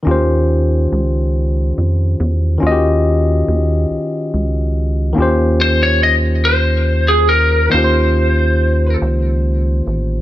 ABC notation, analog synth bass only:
X:1
M:6/8
L:1/8
Q:3/8=47
K:Ebmix
V:1 name="Analog synth bass" clef=bass
E,,2 D,,2 F,, _F,, | E,,2 E,, D,, D,,2 | E,,6 | E,,3 D,,2 =A,,, |]